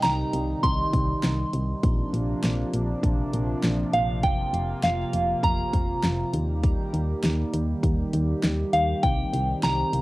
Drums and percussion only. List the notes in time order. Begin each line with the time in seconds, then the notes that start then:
0.03 snare, closed hi-hat
0.33 closed hi-hat
0.63 kick, closed hi-hat
0.93 kick, closed hi-hat
1.23 snare, closed hi-hat
1.53 closed hi-hat
1.83 kick, closed hi-hat
2.14 closed hi-hat
2.43 snare, closed hi-hat
2.73 closed hi-hat
3.03 kick, closed hi-hat
3.33 closed hi-hat
3.63 snare, closed hi-hat
3.93 closed hi-hat
4.23 kick, closed hi-hat
4.54 closed hi-hat
4.83 snare, closed hi-hat
5.13 closed hi-hat
5.43 kick, closed hi-hat
5.73 kick, closed hi-hat
6.03 snare, closed hi-hat
6.33 closed hi-hat
6.63 kick, closed hi-hat
6.94 closed hi-hat
7.23 snare, closed hi-hat
7.53 closed hi-hat
7.83 kick, closed hi-hat
8.13 closed hi-hat
8.43 snare, closed hi-hat
8.73 closed hi-hat
9.03 kick, closed hi-hat
9.34 closed hi-hat
9.63 snare, closed hi-hat
9.93 closed hi-hat